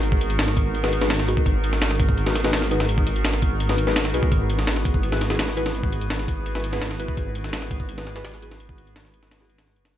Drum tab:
HH |x-xxx-x-x-x-x-x-|x-x-x-x-x-x-x-x-|x-xxx-x-x-x-x-x-|x-x-x-x-x-x-x-x-|
SD |----oo---o-ooo--|---ooo---ooooo-o|----oo---o-ooo--|---ooo---ooooo-o|
BD |-o----o--------o|o-----oo--------|-o----o--------o|o-----oo--------|

HH |x-xxx-x-x-x-x-x-|x-x-x-x-x-x-x-x-|x-xxx-x-x-xx-xx-|
SD |----oo---o-ooo--|---ooo---ooooo-o|----oo-ooo-oo-o-|
BD |-o----o--------o|o-----oo--------|-o--------------|